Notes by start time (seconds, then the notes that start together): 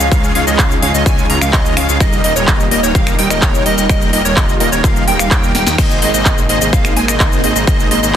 Already playing: C#3 F3 G#3 G#4
0.00 shaker
0.11 C#2 G#3 C#4 D#4 F4 C#5 F5, kick, shaker
0.24 shaker
0.35 C#2 G#3 C#4 F4 C#5 F5, open hi-hat
0.47 C#2 G#3 C#4 F4 C#5 D#5, shaker
0.58 C#2 G#3 C#4 F4 C#5 F5, kick, clap, shaker
0.71 shaker
0.82 C#2 G#3 C#4 F4 C#5 F5, open hi-hat
0.94 C#2 G#3 C#4 F4 C#5 D#5, shaker
1.06 C#2 G#3 C#4 F4 C#5 G#5, kick, shaker
1.18 shaker
1.30 C#2 G#3 C#4 F4 C#5 A#5, open hi-hat
1.41 C#2 G#3 C#4 F4 C#5 F5, finger snap, shaker
1.53 C#2 G#3 C#4 F4 C#5 D#5, kick, clap, shaker
1.66 shaker
1.77 C#2 G#3 C#4 F4 C#5 F5, finger snap, open hi-hat
1.89 C#2 G#3 C#4 F4 C#5 F5, shaker
2.00 D#1 A#2 D#3 G3 A#3 D#4 G4 A#4 D#5, finger snap, kick, shaker
2.13 shaker
2.24 D#1 G3 A#3 D#4 A#4 D#5, open hi-hat
2.36 D#1 G3 A#3 D#4 A#4 C#5, shaker
2.47 D#1 G3 A#3 D#4 A#4 D#5, kick, clap, shaker
2.60 shaker
2.71 D#1 G3 A#3 D#4 A#4 D#5, open hi-hat
2.83 D#1 G3 A#3 D#4 A#4 C#5, shaker
2.95 D#1 G3 A#3 D#4 A#4 F5, kick, shaker
3.07 finger snap, shaker
3.19 D#1 G3 A#3 D#4 A#4 G5, open hi-hat
3.30 D#1 G3 A#3 D#4 A#4 D#5, finger snap, shaker
3.42 D#1 G3 A#3 D#4 A#4 C#5, kick, clap, shaker
3.55 shaker
3.66 D#1 G3 A#3 D#4 A#4 D#5, open hi-hat
3.78 D#1 G3 A#3 D#4 A#4 D#5, shaker
3.89 D#1 G3 A#3 D#4 F4 A#4 D#5, finger snap, kick, shaker
4.02 shaker
4.13 D#1 G3 A#3 D#4 A#4 D#5, open hi-hat
4.25 D#1 G3 A#3 D#4 A#4 C#5, shaker
4.36 D#1 G3 A#3 D#4 A#4 D#5, kick, clap, shaker
4.49 shaker
4.60 D#1 G3 A#3 D#4 A#4 D#5, open hi-hat
4.72 D#1 G3 A#3 D#4 A#4 C#5, shaker
4.84 D#1 G3 A#3 D#4 A#4 F5, kick, clap, shaker
4.96 shaker
5.08 D#1 G3 A#3 D#4 A#4 G5, open hi-hat
5.19 D#1 G3 A#3 D#4 A#4 F5, finger snap, shaker
5.31 D#2 G3 A#3 D#4 A#4 G5, kick, clap, shaker
5.44 shaker
5.55 D#1 G3 A#3 D#4 A#4 G5, snare, open hi-hat
5.67 D#2 G3 A#3 D#4 A#4 G5, snare, shaker
5.78 G#1 C3 G#3 A#3 D#4 G#4 C5 D#5, finger snap, kick, crash, shaker
5.91 shaker
6.02 G#1 A#3 D#4 G#4 C5 D#5, open hi-hat
6.14 G#1 A#3 D#4 G#4 C5 D#5, shaker
6.25 G#1 A#3 D#4 G#4 C5 D#5, kick, clap, shaker
6.38 shaker
6.49 G#1 A#3 D#4 G#4 C5 D#5, open hi-hat
6.61 G#1 A#3 D#4 G#4 C5 D#5, shaker
6.73 G#1 A#3 D#4 G#4 C5 F5, kick, shaker
6.85 finger snap, shaker
6.97 G#1 A#3 D#4 G#4 C5 G#5, open hi-hat
7.08 G#1 A#3 D#4 G#4 C5 D#5, finger snap, shaker
7.20 G#1 A#3 D#4 G#4 C5 D#5, kick, clap, shaker
7.33 shaker
7.44 G#1 A#3 D#4 G#4 C5 D#5, open hi-hat
7.56 G#1 A#3 D#4 G#4 C5 D#5, shaker
7.67 G#1 A#3 D#4 G#4 C5 D#5, kick, shaker
7.80 shaker
7.91 G#1 A#3 D#4 G#4 C5 D#5, open hi-hat
8.03 G#1 A#3 D#4 G#4 C5 D#5, shaker